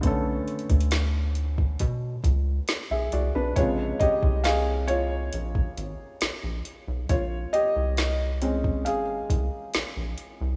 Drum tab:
HH |x---xxxxx---x---x---x---x---x---|x---x---x---x---x---x---x---x---|x---x---x---x---x---x---x---x---|
SD |--------o---------------o-------|--------o---------------o-------|--------o---------------o-------|
BD |o-----o-------o-o---o-----------|o---o-o-----------o-------------|o-------------o-----o-----------|